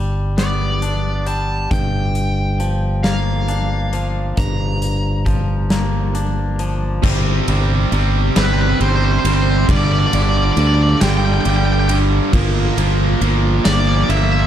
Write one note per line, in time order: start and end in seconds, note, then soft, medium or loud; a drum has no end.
0.00 1.67 G1 medium
0.00 1.25 G3 medium
0.38 1.71 B3 medium
0.38 1.30 D5 medium
0.38 snare medium
0.38 closed hi-hat medium
0.82 3.48 D4 medium
0.82 closed hi-hat medium
1.27 1.71 G3 medium
1.27 1.71 A5 medium
1.27 closed hi-hat soft
1.71 4.34 G1 medium
1.71 3.93 G2 medium
1.71 3.08 G5 medium
1.71 kick medium
1.71 closed hi-hat medium
2.15 closed hi-hat medium
2.60 3.92 F3 medium
2.60 closed hi-hat soft
3.03 5.26 A#3 medium
3.03 4.41 F5 medium
3.03 snare medium
3.03 closed hi-hat medium
3.48 5.70 D4 medium
3.48 closed hi-hat soft
3.93 5.24 F3 medium
3.93 closed hi-hat soft
4.37 6.99 G1 medium
4.37 6.59 G2 medium
4.37 6.55 A#5 medium
4.37 kick loud
4.37 closed hi-hat medium
4.82 closed hi-hat medium
5.26 6.58 F3 medium
5.26 kick medium
5.26 closed hi-hat soft
5.70 7.03 A#3 medium
5.70 snare medium
5.70 closed hi-hat medium
6.15 7.03 D4 medium
6.15 closed hi-hat soft
6.59 7.04 F3 medium
6.59 closed hi-hat medium
7.03 7.40 G1 loud
7.03 7.47 C3 loud
7.03 7.48 G3 loud
7.03 7.48 C4 loud
7.03 kick loud
7.03 crash loud
7.48 7.85 G1 medium
7.48 7.91 C3 medium
7.48 7.93 G3 medium
7.48 7.92 C4 loud
7.48 ride medium
7.92 8.29 G1 medium
7.92 8.36 C3 medium
7.92 8.36 G3 medium
7.92 8.37 C4 loud
7.92 ride medium
8.36 8.73 G1 loud
8.36 8.79 C3 medium
8.36 8.80 G3 medium
8.36 8.80 C4 medium
8.36 8.44 B4 medium
8.36 snare loud
8.36 ride loud
8.45 8.53 B4 medium
8.54 8.61 B4 medium
8.61 8.69 B4 medium
8.70 8.78 B4 medium
8.80 9.17 G1 medium
8.80 9.24 C3 medium
8.80 9.24 G3 medium
8.80 9.25 C4 medium
8.80 8.89 C5 loud
8.80 ride medium
8.89 8.96 C5 medium
8.97 9.04 C5 medium
9.05 9.12 C5 medium
9.12 9.19 C5 medium
9.19 9.27 C5 medium
9.24 9.68 G1 loud
9.24 9.66 C3 medium
9.24 9.67 G3 loud
9.24 9.67 C4 loud
9.24 9.34 C5 medium
9.24 ride medium
9.34 9.42 C5 medium
9.42 9.50 C5 medium
9.51 9.57 C5 medium
9.58 9.65 C5 medium
9.69 10.06 G1 medium
9.69 10.11 G2 loud
9.69 10.12 D3 loud
9.69 10.13 G3 loud
9.69 9.77 D5 loud
9.69 kick loud
9.69 ride loud
9.77 9.84 D5 medium
9.85 9.92 D5 loud
9.92 9.99 D5 medium
9.99 10.06 D5 medium
10.07 10.14 D5 medium
10.13 10.50 G1 medium
10.13 10.56 G2 medium
10.13 10.56 D3 medium
10.13 10.57 G3 loud
10.13 10.22 D5 loud
10.13 ride medium
10.22 10.29 D5 medium
10.29 10.37 D5 medium
10.37 10.45 D5 medium
10.45 10.52 D5 medium
10.53 10.60 D5 medium
10.57 10.94 D2 loud
10.57 11.00 G2 medium
10.57 11.01 D3 loud
10.57 11.01 G3 loud
10.57 10.67 D5 loud
10.57 ride medium
10.67 10.74 D5 medium
10.74 10.82 D5 medium
10.82 10.89 D5 medium
10.90 10.97 D5 medium
10.98 11.38 G1 loud
10.98 11.44 G2 medium
10.98 11.01 D5 medium
10.98 11.09 G5 loud
10.98 snare loud
10.98 ride loud
11.02 11.45 D3 medium
11.02 11.45 G3 medium
11.10 11.17 G5 medium
11.17 11.25 G5 medium
11.26 11.33 G5 medium
11.34 11.41 G5 medium
11.41 11.49 G5 medium
11.41 ride medium
11.45 12.19 G1 medium
11.45 11.88 G2 medium
11.45 11.88 D3 medium
11.45 11.89 G3 loud
11.50 11.56 G5 medium
11.57 11.65 G5 medium
11.66 11.73 G5 medium
11.73 11.80 G5 medium
11.80 11.88 G5 medium
11.89 12.31 G2 medium
11.89 12.31 D3 medium
11.89 12.31 G3 medium
11.89 11.96 G5 medium
11.89 ride medium
12.33 12.70 G1 loud
12.33 12.76 A#2 loud
12.33 12.77 F3 loud
12.33 12.78 A#3 loud
12.33 kick loud
12.33 ride loud
12.77 13.14 G1 medium
12.77 13.20 A#2 medium
12.77 13.21 F3 medium
12.77 13.22 A#3 loud
12.77 ride medium
13.21 13.58 G1 loud
13.21 13.64 A#2 medium
13.21 13.65 F3 medium
13.21 13.66 A#3 medium
13.21 ride medium
13.64 14.02 G1 loud
13.64 14.08 A#2 medium
13.64 14.09 F3 medium
13.64 14.10 A#3 loud
13.64 13.72 D5 medium
13.64 snare loud
13.64 ride loud
13.73 13.79 D5 medium
13.80 13.87 D5 medium
13.88 13.95 D5 medium
13.95 14.03 D5 medium
14.04 14.11 D5 medium
14.09 14.46 G1 medium
14.09 14.47 A#2 medium
14.09 14.47 F3 loud
14.09 14.47 A#3 loud
14.09 14.17 E5 medium
14.09 ride medium
14.17 14.24 E5 medium
14.24 14.32 E5 medium
14.32 14.40 E5 medium
14.40 14.46 E5 medium